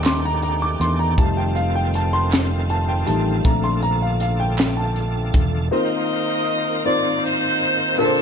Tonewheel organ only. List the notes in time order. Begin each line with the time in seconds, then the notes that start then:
Already playing: D#3 A3 D4 G4
1.19 C4 F4 A4
3.44 D3 A3
5.73 D#3 A#3 C4 F4
7.99 D3 C5